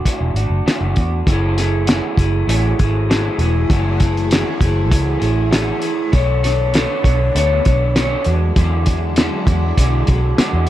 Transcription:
0.06 clean electric guitar E3 A3 D4 F#4, kick, closed hi-hat
0.21 fingered electric bass E1
0.34 fingered electric bass G#1, clean electric guitar D4 F#4, closed hi-hat
0.39 clean electric guitar A3
0.50 fingered electric bass F#1
0.66 clean electric guitar E3 A3 D4 F#4, snare, closed hi-hat
0.81 fingered electric bass F#1
0.96 fingered electric bass E2, clean electric guitar A3 D4 F#4, kick, closed hi-hat
1.26 fingered electric bass F#1, string machine E3 A3 F#4 G#4, clean electric guitar F#3 A3 E4 G#4, kick, closed hi-hat
1.58 clean electric guitar A3 E4 G#4, snare, closed hi-hat
1.87 clean electric guitar F#3 A3 E4 G#4, snare, closed hi-hat
2.17 fingered electric bass F#1, clean electric guitar A3 E4 G#4, kick, closed hi-hat
2.47 fingered electric bass A1, clean electric guitar F#3 A3 E4 G#4, closed hi-hat
2.79 fingered electric bass G#1, clean electric guitar A3 E4 G#4, kick, closed hi-hat
3.09 clean electric guitar F#3 A3 E4 G#4, snare, closed hi-hat
3.38 fingered electric bass E1, clean electric guitar E4 G#4, closed hi-hat
3.43 clean electric guitar A3
3.70 fingered electric bass F#1, clean electric guitar F#3 A3 E4 G#4, kick, closed hi-hat
4.00 clean electric guitar A3 E4 G#4, kick, closed hi-hat
4.17 closed hi-hat
4.31 clean electric guitar F#3 A3 E4 G#4, snare, closed hi-hat
4.61 fingered electric bass F#1, clean electric guitar A3 E4 G#4, kick, closed hi-hat
4.90 fingered electric bass C#2, clean electric guitar F#3 A3 E4 G#4, kick, closed hi-hat
5.20 fingered electric bass A1, clean electric guitar A3 E4 G#4, closed hi-hat
5.50 clean electric guitar F#3 A3 E4 G#4, snare, closed hi-hat
5.81 clean electric guitar A3 E4 G#4, closed hi-hat
6.12 fingered electric bass B1, string machine D3 A3 B3 D4, clean electric guitar B3 D4 A4 C#5, kick, closed hi-hat
6.43 clean electric guitar D4 A4 C#5, snare, closed hi-hat
6.74 clean electric guitar B3 D4 A4 C#5, snare, closed hi-hat
7.03 fingered electric bass B1, clean electric guitar D4 A4 C#5, kick, closed hi-hat
7.35 fingered electric bass D2, clean electric guitar B3 D4 A4 C#5, closed hi-hat
7.65 fingered electric bass B1, clean electric guitar D4 A4 C#5, kick, closed hi-hat
7.96 clean electric guitar B3 D4 A4 C#5, snare, closed hi-hat
8.24 fingered electric bass E2, string machine D3 F#3 G#3 E4, clean electric guitar D4 F#4, closed hi-hat
8.29 clean electric guitar G#3
8.56 fingered electric bass E2, clean electric guitar E3 G#3 D4 F#4, kick, closed hi-hat
8.86 clean electric guitar G#3 D4 F#4, kick, closed hi-hat
9.16 clean electric guitar E3 G#3 D4, snare, closed hi-hat
9.20 clean electric guitar F#4
9.47 fingered electric bass E2, clean electric guitar G#3 D4 F#4, kick, closed hi-hat
9.78 fingered electric bass B1, clean electric guitar E3 G#3 D4 F#4, kick, closed hi-hat
10.07 fingered electric bass B1, clean electric guitar D4 F#4, kick, closed hi-hat
10.11 clean electric guitar G#3
10.37 clean electric guitar E3 G#3 D4 F#4, muted fingered electric bass stroke, snare, closed hi-hat
10.53 fingered electric bass E2

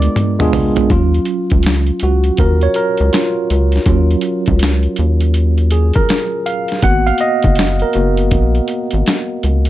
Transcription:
Already playing: tine electric piano G#3 B3 D4 F4 A#4, flugelhorn D5
0.02 closed hi-hat
0.16 closed hi-hat, mid tom
0.39 tine electric piano G#3 B3 D4 F4 G#4, mid tom
0.53 floor tom, open hi-hat
0.76 closed hi-hat, floor tom
0.90 analog synth bass D#2, tine electric piano F#3 C#4 F4, kick, closed hi-hat
1.14 closed hi-hat
1.25 closed hi-hat
1.50 analog synth bass C#2, kick, closed hi-hat
1.63 snare, closed hi-hat
1.87 closed hi-hat
2.00 analog synth bass C#2, tine electric piano F#4, closed hi-hat
2.24 closed hi-hat
2.37 analog synth bass D#2, tine electric piano A#4, kick, closed hi-hat
2.61 tine electric piano C#5, closed hi-hat
2.74 tine electric piano A#4, closed hi-hat
2.97 analog synth bass C#2, closed hi-hat
3.13 tine electric piano F4, snare, closed hi-hat
3.50 analog synth bass C#2, closed hi-hat
3.72 snare, closed hi-hat
3.86 analog synth bass D#2, tine electric piano F#3 C#4 F4, kick, closed hi-hat
4.11 closed hi-hat
4.21 closed hi-hat
4.46 analog synth bass C#2, kick, closed hi-hat
4.59 snare, closed hi-hat
4.83 closed hi-hat
4.96 analog synth bass D#2, closed hi-hat
5.21 closed hi-hat
5.34 closed hi-hat
5.58 closed hi-hat
5.71 tine electric piano G#4, closed hi-hat
5.93 tine electric piano A#4, kick, closed hi-hat
6.09 snare, closed hi-hat
6.46 tine electric piano F5, closed hi-hat
6.68 snare, closed hi-hat
6.82 analog synth bass G#1, tine electric piano A#3 B3 F#4 F#5, kick, closed hi-hat
7.07 tine electric piano F5, closed hi-hat
7.18 tine electric piano D#5, closed hi-hat
7.43 analog synth bass F#1, kick, closed hi-hat
7.55 snare, closed hi-hat
7.79 tine electric piano A#4, closed hi-hat
7.93 analog synth bass F#1, tine electric piano A#3 B3 F#4, closed hi-hat
8.17 closed hi-hat
8.31 analog synth bass A#1, kick, closed hi-hat
8.55 closed hi-hat
8.68 closed hi-hat
8.91 analog synth bass G#1, closed hi-hat
9.06 snare, closed hi-hat
9.43 analog synth bass C#2, closed hi-hat
9.65 closed hi-hat

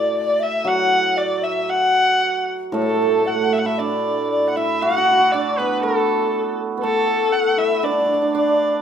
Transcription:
Already playing: hammered dulcimer A2, xiao D5, erhu D5
0.13 xiao D5
0.17 erhu D5
0.40 xiao E5, erhu E5
0.65 hammered dulcimer F#3, xiao F#5, erhu F#5
1.17 xiao D5, erhu D5
1.43 xiao E5, erhu E5
1.69 xiao F#5, erhu F#5
2.72 hammered dulcimer A2 A3, xiao A4, erhu A4
2.82 hammered dulcimer A3
2.89 hammered dulcimer A3
2.95 hammered dulcimer A3
3.02 hammered dulcimer A3
3.12 hammered dulcimer A3
3.21 hammered dulcimer A3
3.26 hammered dulcimer A3, xiao F#5, erhu F#5
3.35 hammered dulcimer A3
3.41 hammered dulcimer A3
3.49 hammered dulcimer A3, xiao E5, erhu E5
3.58 erhu F#5
3.65 hammered dulcimer E4, xiao E5, erhu E5
3.78 hammered dulcimer D4, xiao D5, erhu D5
4.30 xiao D5, erhu D5
4.49 erhu F#5
4.56 hammered dulcimer E4, erhu E5, xiao E5
4.81 hammered dulcimer F#4, erhu F#5, xiao F#5
4.90 hammered dulcimer F#4
4.98 hammered dulcimer F#4
5.05 hammered dulcimer F#4
5.12 hammered dulcimer F#4
5.19 hammered dulcimer F#4
5.32 hammered dulcimer D4, erhu D5, xiao D5
5.58 hammered dulcimer B3, erhu B4, xiao B4
5.78 xiao B4
5.83 hammered dulcimer A3, erhu A4, xiao A4
6.77 hammered dulcimer B3, xiao B4
6.83 hammered dulcimer A3, erhu A4, xiao A4
7.32 erhu F#5
7.58 hammered dulcimer E4, erhu E5
7.83 hammered dulcimer D4, erhu D5, xiao D5
7.91 hammered dulcimer D4
8.00 hammered dulcimer D4
8.06 hammered dulcimer D4
8.14 hammered dulcimer D4
8.22 hammered dulcimer D4
8.35 hammered dulcimer D4, erhu D5, xiao D5

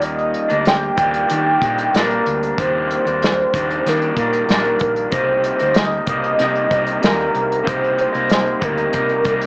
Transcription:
Already playing: fingered electric bass D#2, clean electric guitar D#3 G3 A#3
0.02 soft synth lead D#5, closed hi-hat
0.19 closed hi-hat
0.34 closed hi-hat
0.48 fingered electric bass D2, clean electric guitar G3 A#3 D4, closed hi-hat
0.65 soft synth lead G5, snare, closed hi-hat
0.96 fingered electric bass D#2, clean electric guitar D#3 G3 A#3 D4, soft synth lead G5, kick, closed hi-hat
1.14 closed hi-hat
1.28 clean electric guitar D#3 G3 A#3 D4, fingered electric bass D#3, closed hi-hat
1.62 fingered electric bass A#2, clean electric guitar D#3 G3 A#3 D4, kick, closed hi-hat
1.78 closed hi-hat
1.94 fingered electric bass A#1, clean electric guitar G3 A#3 D4, soft synth lead A#4, snare, closed hi-hat
2.10 closed hi-hat
2.26 fingered electric bass D2, closed hi-hat
2.43 closed hi-hat
2.58 fingered electric bass D#2, clean electric guitar D#3 G3 A#3 D4, soft synth lead C5, kick, closed hi-hat
2.91 closed hi-hat
3.05 fingered electric bass D#2, clean electric guitar G3 A#3 D4, closed hi-hat
3.22 snare, closed hi-hat
3.53 fingered electric bass D#2, clean electric guitar D#3 G3 A#3 D4, kick, closed hi-hat
3.70 closed hi-hat
3.85 clean electric guitar D#3 G3 A#3 D4, fingered electric bass D#3, soft synth lead A#4, snare, closed hi-hat
4.02 closed hi-hat
4.16 fingered electric bass A#2, clean electric guitar D#3 G3 A#3 D4, kick, closed hi-hat
4.33 closed hi-hat
4.47 fingered electric bass A#1, clean electric guitar D#3 G3 A#3 D4, soft synth lead A#4, snare, closed hi-hat
4.64 closed hi-hat
4.79 fingered electric bass A#1, soft synth lead A#4, kick, closed hi-hat
4.96 closed hi-hat
5.10 fingered electric bass C2, clean electric guitar C3 G3 A#3 D#4, soft synth lead C5, kick, closed hi-hat
5.44 closed hi-hat
5.58 fingered electric bass D2, clean electric guitar G3 A#3 D#4, closed hi-hat
5.74 soft synth lead D#5, snare, closed hi-hat
6.06 fingered electric bass C2, clean electric guitar C3 G3 A#3 D#4, soft synth lead D#5, kick, closed hi-hat
6.24 closed hi-hat
6.38 clean electric guitar C3 G3 A#3 D#4, fingered electric bass C3, snare, closed hi-hat
6.55 closed hi-hat
6.70 fingered electric bass C2, clean electric guitar C3 G3 A#3 D#4, kick, closed hi-hat
6.87 closed hi-hat
7.01 fingered electric bass D#2, clean electric guitar C3 G3 A#3 D#4, soft synth lead A#4, snare, closed hi-hat
7.20 closed hi-hat
7.35 fingered electric bass C2, closed hi-hat
7.52 closed hi-hat
7.64 fingered electric bass C2, clean electric guitar C3 G3 A#3 D#4, kick, closed hi-hat
7.69 soft synth lead C5
7.84 closed hi-hat
7.98 soft synth lead C5, closed hi-hat
8.12 fingered electric bass C2, clean electric guitar G3 A#3 D#4, closed hi-hat
8.30 soft synth lead C5, snare, closed hi-hat
8.60 fingered electric bass D2, clean electric guitar C3 G3 A#3 D#4, kick, closed hi-hat
8.64 soft synth lead A#4
8.78 closed hi-hat
8.92 clean electric guitar C3 G3 A#3 D#4, fingered electric bass C3, kick, closed hi-hat
9.09 closed hi-hat
9.24 fingered electric bass C2, clean electric guitar C3 G3 A#3 D#4, kick, closed hi-hat
9.42 closed hi-hat

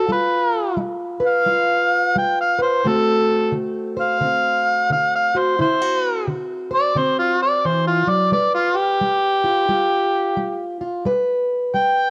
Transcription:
Already playing: steel-string acoustic guitar C4
0.08 steel-string acoustic guitar G3 F4, harmonica B4
0.77 steel-string acoustic guitar G3
1.20 steel-string acoustic guitar B4
1.27 harmonica F5
1.46 steel-string acoustic guitar G3 F4
2.15 steel-string acoustic guitar G3, harmonica G5
2.41 harmonica F5
2.59 steel-string acoustic guitar B4, harmonica C5
2.84 steel-string acoustic guitar D3 A3 C4 F#4, harmonica A4
3.52 steel-string acoustic guitar D3
3.97 steel-string acoustic guitar C5, harmonica F5
4.21 steel-string acoustic guitar D3 C4
4.90 steel-string acoustic guitar D3, harmonica F5
5.15 harmonica F5
5.35 steel-string acoustic guitar F#4, harmonica C5
5.59 steel-string acoustic guitar D3 E4, harmonica C5
5.82 steel-string acoustic guitar F#4
6.27 steel-string acoustic guitar D3
6.71 steel-string acoustic guitar C5
6.75 harmonica D5
6.95 steel-string acoustic guitar D3 C4, harmonica C5
7.19 harmonica F4
7.42 harmonica D5
7.65 steel-string acoustic guitar E3, harmonica C5
7.87 harmonica F4
8.07 steel-string acoustic guitar F#3, harmonica D5
8.32 steel-string acoustic guitar G3 B4, harmonica D5
8.55 harmonica F4
8.76 harmonica G4
9.01 steel-string acoustic guitar G3
9.44 steel-string acoustic guitar F4
9.69 steel-string acoustic guitar G3 F4
10.37 steel-string acoustic guitar G3
10.81 steel-string acoustic guitar F4
11.05 steel-string acoustic guitar G3 B4
11.74 steel-string acoustic guitar G3, harmonica G5

